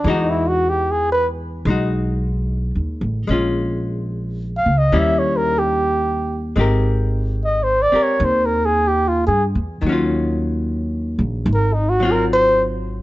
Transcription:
0.00 0.12 D4 medium
0.04 1.62 E2 medium
0.04 3.29 E3 soft
0.04 1.66 G#3 soft
0.04 1.67 D#4 medium
0.10 0.31 D#4 medium
0.10 1.69 F#4 medium
0.30 0.49 E4 medium
0.48 0.71 F#4 medium
0.70 0.93 G4 medium
0.91 1.12 G#4 medium
1.12 1.28 B4 medium
1.65 2.70 B1 medium
1.65 3.26 G#3 soft
1.65 3.30 D#4 soft
1.70 3.31 F#4 soft
2.75 3.00 D#2 medium
3.01 3.26 A1 medium
3.27 4.61 A#1 medium
3.27 4.91 G#3 soft
3.27 4.92 C#4 soft
3.32 4.93 F4 soft
4.57 4.80 F5 medium
4.66 4.90 C#2 medium
4.78 5.00 D#5 medium
4.92 6.52 D#2 medium
4.92 6.56 D#3 soft
4.92 6.55 G3 soft
4.92 6.56 C#4 medium
4.92 6.57 E4 medium
4.99 5.20 E5 medium
5.19 5.38 C#5 medium
5.37 5.60 A#4 medium
5.59 6.42 G4 medium
6.56 7.89 G#1 medium
6.56 9.83 G#3 soft
6.56 7.91 C4 soft
6.56 7.92 G4 soft
6.61 7.94 A#4 soft
7.45 7.65 D#5 medium
7.64 7.84 C5 medium
7.82 8.04 D5 medium
7.92 9.83 C4 soft
7.92 9.83 G4 soft
7.92 9.84 A#4 soft
7.92 muted upright bass stroke soft
8.03 8.26 C#5 medium
8.20 9.25 D#2 medium
8.25 8.47 C5 medium
8.46 8.67 A#4 medium
8.66 8.89 G#4 medium
8.88 9.10 G4 medium
9.08 9.26 F4 medium
9.27 9.53 G2 medium
9.27 9.44 G#4 medium
9.55 9.81 E2 medium
9.81 11.15 D#2 medium
9.81 11.45 D#3 medium
9.86 11.48 F#3 soft
9.86 11.49 C#4 soft
9.92 11.51 F4 soft
11.19 11.44 A#1 medium
11.46 13.02 G#1 medium
11.54 11.75 A#4 medium
11.74 11.91 D#4 medium
11.90 12.13 F#4 medium
12.00 13.02 F#3 soft
12.00 13.02 C4 medium
12.05 13.02 F4 medium
12.12 12.26 A#4 medium
12.33 12.64 C5 medium

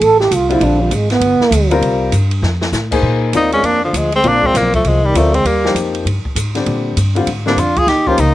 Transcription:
0.01 0.30 A1 medium
0.01 0.20 A4 loud
0.01 ride medium
0.20 0.36 G4 loud
0.20 snare soft
0.31 0.60 C2 medium
0.31 0.54 F4 medium
0.31 hi-hat pedal medium
0.31 ride medium
0.49 0.89 D3 medium
0.49 0.89 G3 medium
0.49 0.90 C4 medium
0.49 0.66 E4 loud
0.49 0.90 F4 medium
0.49 ride soft
0.60 0.90 A#1 medium
0.60 ride medium
0.65 0.83 D4 medium
0.82 0.96 F3 medium
0.91 1.20 G#1 medium
0.91 1.11 G#3 medium
0.91 hi-hat pedal soft
0.91 ride medium
1.10 1.79 B3 loud
1.10 snare soft
1.10 ride soft
1.20 1.39 G1 medium
1.20 ride medium
1.40 muted upright bass stroke soft
1.40 snare soft
1.51 1.80 D2 loud
1.51 hi-hat pedal medium
1.51 ride medium
1.71 2.10 G3 medium
1.71 2.10 C4 medium
1.71 2.11 F4 medium
1.71 2.11 A#4 medium
1.71 ride soft
1.81 2.11 C2 medium
1.81 ride medium
2.12 2.42 G2 medium
2.12 hi-hat pedal medium
2.12 ride medium
2.31 ride soft
2.42 2.72 F2 medium
2.42 snare medium
2.61 snare medium
2.72 3.02 A2 medium
2.72 snare medium
2.72 hi-hat pedal medium
2.91 3.31 A#3 medium
2.91 3.31 D#4 medium
2.91 3.32 G#4 medium
2.91 3.32 C5 medium
2.91 kick medium
2.91 crash medium
3.02 3.32 A#2 medium
3.33 3.62 D#2 medium
3.33 3.51 A#3 medium
3.33 3.79 C4 medium
3.33 3.53 D#4 medium
3.33 3.79 F4 medium
3.33 3.80 A#4 medium
3.33 3.80 D5 medium
3.33 hi-hat pedal medium
3.33 ride medium
3.52 3.66 G#3 medium
3.52 3.67 C#4 medium
3.52 ride soft
3.63 3.93 F2 medium
3.63 3.83 A#3 medium
3.63 3.84 D4 medium
3.63 ride medium
3.84 3.96 D3 medium
3.84 3.98 F3 medium
3.93 4.23 D2 medium
3.93 4.13 F3 medium
3.93 4.14 G#3 medium
3.93 hi-hat pedal medium
3.93 ride medium
4.12 4.25 G#3 medium
4.12 4.30 C4 medium
4.12 ride soft
4.24 4.53 A#1 medium
4.24 4.43 A#3 medium
4.24 4.69 C4 medium
4.24 4.70 F4 medium
4.24 4.70 A#4 medium
4.24 4.70 D5 medium
4.24 ride medium
4.28 4.48 D4 medium
4.42 4.56 G#3 medium
4.42 kick medium
4.47 4.59 C4 medium
4.54 4.84 B1 medium
4.54 4.73 F3 medium
4.54 4.74 A#3 medium
4.54 snare soft
4.54 hi-hat pedal medium
4.54 ride medium
4.74 4.86 F3 medium
4.74 4.88 A3 medium
4.74 kick medium
4.74 ride soft
4.84 5.13 C2 medium
4.84 5.07 F3 medium
4.84 5.07 G#3 medium
4.84 ride medium
5.05 5.17 D#3 medium
5.05 5.19 G3 medium
5.14 5.44 D2 medium
5.14 5.36 F3 medium
5.14 5.37 A3 medium
5.14 5.32 C4 medium
5.14 5.33 F4 medium
5.14 5.33 A#4 medium
5.14 5.33 D5 medium
5.14 hi-hat pedal medium
5.14 ride medium
5.34 5.48 G#3 medium
5.34 5.48 C4 medium
5.34 ride soft
5.44 5.74 D#2 medium
5.44 5.76 G3 medium
5.44 5.76 A#3 medium
5.44 ride medium
5.64 6.04 F3 medium
5.64 6.04 A#3 medium
5.64 6.04 D#4 medium
5.64 6.04 G4 medium
5.64 snare medium
5.75 6.04 F2 medium
5.75 hi-hat pedal medium
5.75 ride medium
5.95 ride soft
6.05 6.23 G2 medium
6.05 ride medium
6.25 muted upright bass stroke soft
6.25 kick soft
6.35 6.65 G#2 medium
6.35 hi-hat pedal medium
6.35 ride medium
6.55 6.94 D3 medium
6.55 6.95 G3 medium
6.55 6.95 C4 medium
6.55 6.95 D4 medium
6.55 snare soft
6.55 ride soft
6.66 6.96 A#2 medium
6.66 ride medium
6.97 7.26 G2 medium
6.97 hi-hat pedal medium
6.97 ride medium
7.15 7.26 D3 medium
7.15 7.26 G3 medium
7.15 7.26 C4 medium
7.15 7.27 F4 medium
7.15 ride soft
7.26 7.56 G#2 medium
7.26 ride medium
7.46 7.56 D3 medium
7.46 7.57 G3 medium
7.46 7.61 A#3 medium
7.46 7.57 C4 medium
7.46 7.60 D4 medium
7.46 7.57 D4 medium
7.46 snare medium
7.56 7.86 F2 medium
7.56 7.79 D4 medium
7.56 7.80 F4 medium
7.56 hi-hat pedal medium
7.56 ride medium
7.76 7.90 F4 medium
7.76 7.90 G#4 loud
7.76 kick medium
7.76 ride soft
7.87 8.17 D#2 medium
7.87 8.10 D#4 medium
7.87 8.09 G4 medium
7.87 snare soft
7.87 ride medium
8.06 8.17 F3 medium
8.06 8.17 A#3 medium
8.06 8.21 C#4 medium
8.06 8.17 D#4 medium
8.06 8.21 F4 medium
8.06 8.18 G4 medium
8.06 kick medium
8.18 8.34 C#2 medium
8.18 8.34 A#3 medium
8.18 8.34 D#4 medium
8.18 hi-hat pedal medium
8.18 ride medium

